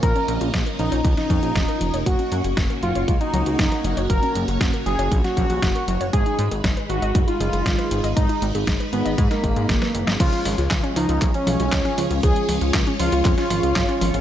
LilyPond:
<<
  \new Staff \with { instrumentName = "Analog synth lead" } { \time 4/4 \key cis \mixolydian \tempo 4 = 118 ais'8 r4 dis'8 r16 dis'4. r16 | fis'8 r4 eis'8 r16 dis'4. r16 | ais'8 r4 gis'8 r16 fis'4. r16 | gis'8 r4 fis'8 r16 eis'4. r16 |
dis'8 r4 b8 r16 ais4. r16 | eis'8 r4 dis'8 r16 cis'4. r16 | gis'8 r4 eis'8 r16 eis'4. r16 | }
  \new Staff \with { instrumentName = "String machine" } { \time 4/4 \key cis \mixolydian << { <eis' dis''>1 | <fis' cis''>1~ | <fis' cis''>1 | <dis' b''>1~ |
<dis' b''>1 | <eis' cis''>1~ | <eis' cis''>1 | } \\ { <ais cis'>1~ | <ais cis'>1~ | <ais cis'>1 | gis1~ |
gis1 | <gis cis'>1~ | <gis cis'>1 | } >> }
  \new Staff \with { instrumentName = "Synth arpeggio sound" } { \time 4/4 \key cis \mixolydian eis16 cis'16 eis16 eis'16 eis16 ais'16 eis16 cis''16 eis16 cis'16 eis16 eis'16 eis16 ais'16 eis16 cis''16 | fis16 cis'16 fis16 fis'16 fis16 ais'16 fis16 cis''16 fis16 cis'16 fis16 fis'16 fis16 ais'16 fis16 cis''16 | fis16 cis'16 fis16 fis'16 fis16 ais'16 fis16 cis''16 fis16 cis'16 fis16 fis'16 fis16 ais'16 fis16 cis''16 | gis16 dis'16 gis16 gis'16 gis16 b'16 gis16 dis''16 gis16 dis'16 gis16 gis'16 gis16 b'16 gis16 dis''16 |
gis16 dis'16 gis16 gis'16 gis16 b'16 gis16 dis''16 gis16 dis'16 gis16 gis'16 gis16 b'16 gis16 dis''16 | eis16 cis'16 eis16 eis'16 eis16 cis'16 eis16 eis'16 eis16 cis'16 eis16 eis'16 eis16 cis'16 eis16 eis'16 | eis16 cis'16 eis16 eis'16 eis16 cis'16 eis16 eis'16 eis16 cis'16 eis16 eis'16 eis16 cis'16 eis16 eis'16 | }
  \new Staff \with { instrumentName = "Analog synth bass" } { \clef bass \time 4/4 \key cis \mixolydian ais,,16 r16 ais,,16 ais,,16 ais,,16 r16 ais,,16 ais,,16 cis,16 r16 eis,16 ais,,16 eis,,16 r16 eis,,16 eis,,16 | fis,,16 r16 fis,16 fis,,16 fis,,16 r16 fis,,16 fis,,16 cis,16 r16 cis,16 cis,16 fis,,16 r16 fis,,16 fis,,16 | fis,,16 r16 fis,,16 fis,,16 fis,,16 r16 fis,,16 fis,,16 ais,,16 r16 ais,,16 ais,,16 fis,,16 r16 fis,,16 fis,,16 | gis,,16 r16 gis,16 gis,,16 gis,,16 r16 gis,,16 gis,,16 fis,,16 r16 fis,,16 fis,,16 gis,,16 r16 gis,,16 gis,,16 |
gis,,16 r16 gis,,16 gis,,16 gis,,16 r16 gis,,16 gis,,16 gis,16 r16 gis,,16 gis,16 gis,,16 r16 fis,,16 gis,,16 | cis,16 r16 gis,,16 cis,16 cis,16 r16 cis,16 cis,16 b,,16 r16 b,,16 b,,16 cis,16 r16 cis,16 cis,16 | cis,16 r16 cis,16 cis,16 cis,16 r16 cis,16 cis,16 eis,16 r16 gis,,16 cis,16 gis,,16 r16 gis,,16 gis,,16 | }
  \new DrumStaff \with { instrumentName = "Drums" } \drummode { \time 4/4 <hh bd>16 hh16 hh16 hh16 <hh bd sn>16 hh16 hh16 hh16 <hh bd>16 <hh sn>16 <hh bd>16 hh16 <hh bd sn>16 hh16 hh16 hh16 | <hh bd>16 hh16 hh16 hh16 <hh bd sn>16 hh16 hh16 hh16 <hh bd>16 hh16 hh16 hh16 <hh bd sn>16 <hh sn>16 hh16 hh16 | <hh bd>16 hh16 hh16 hh16 <hh bd sn>16 hh16 hh16 hh16 <hh bd>16 <hh sn>16 <hh bd>16 hh16 <hh bd sn>16 hh16 hh16 hh16 | <hh bd>16 hh16 hh16 hh16 <hh bd sn>16 hh16 hh16 hh16 <hh bd>16 hh16 hh16 hh16 <hh bd sn>16 <hh sn>16 hh16 hh16 |
<hh bd>16 hh16 hh16 hh16 <hh bd sn>16 hh16 hh16 hh16 <hh bd>16 <hh sn>16 <hh bd>16 hh16 <hh bd sn>16 <hh sn>16 hh16 <hh sn>16 | <cymc hh bd>16 hh16 hho16 hh16 <hc hh bd sn>16 hh16 hho16 hh16 <hc hh bd>16 hh16 hho16 hh16 <hc hh bd sn>16 <hh sn>16 hho16 hh16 | <hh bd>16 hh16 hho16 hh16 <hc hh bd sn>16 hh16 hho16 hh16 <hc hh bd>16 <hh sn>16 hho16 hh16 <hc hh bd sn>16 hh16 hho16 hh16 | }
>>